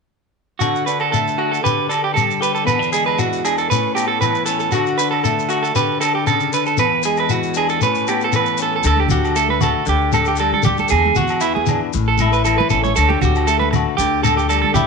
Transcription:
0.59 D3 F#4, low agogo, shekere
0.76 shekere
0.86 D4 B4, shekere
1.00 A4, low agogo
1.12 A3 A4, shekere
1.28 shekere
1.38 F#4, low agogo
1.51 A4, shekere
1.63 D3 G4 B4, shekere
1.89 D4 A4, low agogo, shekere
2.04 G4
2.14 G3 A4, low agogo, shekere
2.31 shekere
2.41 G4 B4, shekere
2.55 A4, shekere
2.65 E2 B3 B4, low agogo, shekere
2.79 D4, shekere
2.93 G#3 G#4, shekere
3.06 B4, low agogo
3.19 E3 F#4, shekere
3.33 shekere
3.45 D4 G#4, low agogo, shekere
3.58 A4, shekere
3.70 A2 C#4 B4, shekere
3.95 B3 G4, low agogo, shekere
4.08 A4
4.21 E3 B4, low agogo, shekere
4.35 shekere
4.46 C#4 A4, shekere
4.60 A4, shekere
4.72 D3 F#4, low agogo, shekere
4.86 shekere
4.98 D4 B4, shekere
5.11 A4, low agogo
5.24 A3 A4, shekere
5.39 shekere
5.49 F#4, low agogo, shekere
5.63 A4, shekere
5.75 D3 G4 B4, shekere
6.01 D4 A4, low agogo, shekere
6.15 G4
6.27 C#3 A4, low agogo, shekere
6.40 shekere
6.53 D3 B4, shekere
6.66 A4, shekere
6.77 E2 B4, muted clean electric guitar stroke, low agogo, shekere
7.03 G#3 G#4, shekere
7.17 B4, low agogo, shekere
7.29 E3 F#4, shekere
7.43 shekere
7.54 D4 G#4, low agogo, shekere
7.69 A4, shekere
7.81 A2 C#4 B4, shekere
7.95 shekere
8.07 B3 G4, low agogo, shekere
8.21 A4, shekere
8.32 E3 B4, low agogo, shekere
8.46 shekere
8.58 C#4, shekere
8.62 A4
8.76 A4
8.83 D2 D3 A4, low agogo, shekere
8.97 G4, high conga
9.08 D2 F#4 G4, low conga, shekere
9.25 low agogo, shekere
9.36 A3 A4, shekere
9.49 B4, high conga
9.61 F#4 A4, low conga, low agogo, shekere
9.86 D2 D3 G4, shekere
10.12 A4, high conga, low agogo, shekere
10.25 G4, shekere
10.36 A4, shekere
10.40 G3, low agogo
10.54 A4, high conga
10.63 D2 G4, low conga, shekere
10.77 A4, high conga, shekere
10.88 E2 G#4, low agogo, shekere
11.06 high conga
11.15 E2 F#4, low conga, shekere
11.28 low agogo, shekere
11.41 E3 E4, shekere
11.55 G#4, high conga
11.66 low conga, low agogo, shekere
11.70 D4
11.93 A1 A2, shekere
12.08 A4
12.18 E4, high conga, low agogo, shekere
12.33 B4, shekere
12.45 E3 A4, low agogo, shekere
12.58 B4, high conga
12.70 A1 C#4 A4, shekere
12.84 C#5, high conga, shekere
12.96 D2 D3 A4, low agogo, shekere
13.09 G4, high conga
13.21 D2 F#4 G4, low conga, shekere
13.36 low agogo, shekere
13.47 A3 A4, shekere
13.59 B4, high conga
13.71 muted clean electric guitar stroke, low conga, low agogo, shekere
13.76 F#4
13.97 D2 D3 G4, shekere
14.23 A4, high conga, low agogo, shekere
14.37 G4, shekere
14.49 G3 A4, low agogo, shekere
14.62 A4, high conga
14.74 D2 E4 G4, low conga, shekere

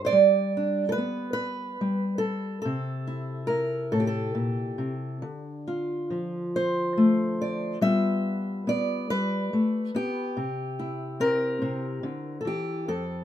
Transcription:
Already playing: G3
0.05 C5 D5
0.12 G3
0.57 D4
0.89 A4 B4
0.98 B3
1.33 B4
1.81 G3
2.18 A4
2.62 C3 A4
3.07 E4
3.47 E4 A#4
3.92 A2 A4
4.00 G4
4.07 A4
4.35 A#2
4.78 C3
5.22 D3
5.67 F4
6.10 F3
6.56 C5
6.97 A3
7.42 D5
7.81 G3 B3 F4 B4 E5
8.67 B3 D5
9.10 G3 B4
9.53 A3
9.95 B3 G4
10.37 C3
10.79 E4
11.20 C4 A#4
11.62 C3
12.03 D3
12.41 A4
12.45 E3 G4
12.88 F2 A4

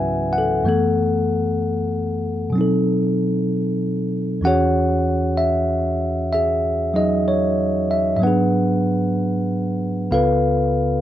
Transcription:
Already playing: C#2 G#2 C#3 E3 F#3 B3 C#4 E4 F#4 B4 E5 F#5 G#5
0.33 F#5
0.38 A4
0.63 F#2 E3 A3 B3
0.68 A4
2.50 B2 F#3
2.56 C4 D#4
2.61 A4
4.41 E2 E3 C#4 F#4 F#5
4.47 G#4 C#5
5.37 E5
6.33 G#4 E5
6.94 F#3 D#4 G#4 D#5
7.28 C#5
7.91 E5
8.16 G#2 F#3 E5
8.22 B3 D4 B4 F#5
8.27 G#4
10.11 C#2 C#3 B3 F4 A4 B4 F5

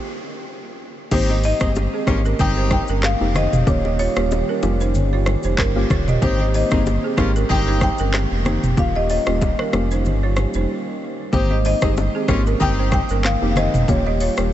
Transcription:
1.11 G#1 D#3 G#3 A#3 C4 D#4 G4 C5, kick, crash, low conga, shaker
1.30 G4 D#5, high bongo
1.44 D#4 C5 D#5, open hi-hat, shaker
1.60 G1 A#3 C4 D#4 G4 G#4, kick, cross-stick, shaker
1.76 high bongo, shaker
1.94 C4 G#4
2.07 G#1 A#3 C4 C#4 D#4 F4 G4, kick, cross-stick, low bongo, shaker
2.25 C#4 A#4, shaker
2.39 G1 C4 D#4 G4 G5, kick, low conga, shaker
2.57 D#4 C5
2.70 G5, kick, cross-stick, low bongo, shaker
2.88 G1 C#4 A#4, shaker
3.03 F5, cross-stick, clap, high bongo, shaker
3.21 F1 A#3 C4 D#4 G4
3.35 D#4 C5 D#5, cross-stick, low conga, shaker
3.52 F1, mid tom, shaker
3.67 D#1 G3 A#3 C#4 F4 G4 C#5, kick, low conga, shaker
3.85 G4 D#5, high bongo
3.99 F4 C#5, open hi-hat, shaker
4.16 D#1 A#3 C#4 F4 G4, cross-stick, shaker
4.31 high bongo, shaker
4.49 C#4 A#4
4.62 F1 A#3 C#4 F4 G4, low bongo, shaker
4.80 D#4 C5, shaker
4.94 G1, low conga, shaker
5.13 F4 C#5
5.26 cross-stick, low bongo, shaker
5.43 F1 D#4 C5, shaker
5.58 G1 C#4 A#4, kick, cross-stick, clap, high bongo, shaker
5.76 A#3 C#4 F4 G4
5.90 D#1 F4 C#5, kick, cross-stick, low conga, shaker
6.08 G4 D#5, mid tom, shaker
6.22 G#1 G#3 A#3 C4 D#4 G4 C5, kick, low conga, shaker
6.40 G4 D#5, high bongo
6.54 D#4 C5 D#5, open hi-hat, shaker
6.71 G1 A#3 C4 D#4 G4 G#4, kick, cross-stick, shaker
6.86 high bongo, shaker
7.04 C4 G#4
7.17 G#1 A#3 C4 C#4 D#4 F4 G4, kick, cross-stick, low bongo, shaker
7.36 C#4 A#4, shaker
7.50 G1 C4 D#4 G4 G5, kick, low conga, shaker
7.68 D#4 C5
7.81 G5, kick, cross-stick, low bongo, shaker
7.98 G1 C#4 A#4, shaker
8.14 cross-stick, clap, high bongo, shaker
8.31 F1
8.45 A#3 C4 D#4 G4 C5, cross-stick, low conga, shaker
8.63 F1, mid tom, shaker
8.77 D#1 G3 A#3 C#4 F4 G4 F5, kick, low conga, shaker
8.95 G4 D#5, high bongo
9.10 F4 C#5 D#5, open hi-hat, shaker
9.26 D#1 A#3 C#4 F4 G4, cross-stick, shaker
9.41 kick, high bongo, shaker
9.59 C#4 A#4, cross-stick
9.73 F1 A#3 C#4 F4 G4, cross-stick, low bongo, shaker
9.91 D#4 C5, shaker
10.05 G1, low conga, shaker
10.23 F4 C#5
10.36 cross-stick, low bongo, shaker
10.54 F1 D#4 C5, shaker
11.32 G#1 D#3 G#3 A#3 C4 D#4 G4 C5, kick, low conga, shaker
11.51 G4 D#5, high bongo
11.65 D#4 C5 D#5, open hi-hat, shaker
11.81 G1 A#3 C4 D#4 G4 G#4, kick, cross-stick, shaker
11.97 high bongo, shaker
12.15 C4 G#4
12.28 G#1 A#3 C4 C#4 D#4 F4 G4, kick, cross-stick, low bongo, shaker
12.46 C#4 A#4, shaker
12.60 G1 C4 D#4 G4 G5, kick, low conga, shaker
12.79 D#4 C5
12.91 G5, kick, cross-stick, low bongo, shaker
13.09 G1 C#4 A#4, shaker
13.24 F5, cross-stick, clap, high bongo, shaker
13.42 F1 A#3 C4 D#4 G4
13.51 F5
13.56 D#4 C5 D#5, cross-stick, low conga, shaker
13.74 F1, mid tom, shaker
13.88 D#1 G3 A#3 C#4 F4 G4 C#5, kick, low conga, shaker
14.06 G4 D#5, high bongo
14.20 F4 C#5, open hi-hat, shaker
14.37 D#1 A#3 C#4 F4 G4, cross-stick, shaker

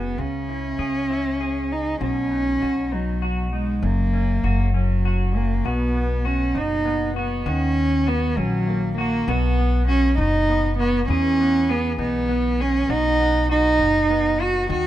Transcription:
Already playing: F#1 F#2 B3 F#4 G#4
0.18 C#2 C#3 C#4
0.49 E4
0.79 C#2 G#4
1.10 E4
1.41 G#4
1.72 D#4
2.01 B1 B2 C#4
2.31 D#4
2.62 B1 F#4
2.92 F#3 D#4
3.22 F#4
3.53 G#3 D#4
3.82 F#1 F#2 A#3
4.13 C#4
4.44 F#1 F#4
4.74 F#3 C#4
5.05 F#4
5.35 A#3 C#4
5.65 B1 B2 B3 F#4
5.95 B3
6.25 C#4 F#4
6.55 F#1 D#4
6.85 B3
7.16 B3 F#4
7.46 D#2 D#3 C#4 F#4
8.07 B3 F#4
8.37 A#1 F#3 C#4
8.68 A#3
8.97 A#3 F#4
9.28 B1 B2 B3 F#4
9.59 B3
9.88 C#4 F#4
10.18 F#1 D#4
10.49 B3
10.79 B3 F#4
11.08 E2 E3 C#4 G#4
11.40 B3
11.69 B3 G#4
11.98 B1 B3 D#4
12.29 B3
12.60 C#4 G#4
12.89 B1 B2 D#4 F#4
13.20 B3
13.49 D#4 F#4
13.79 F#1 D#4
14.10 B3
14.40 F#4
14.69 D#2 D#3 F#4

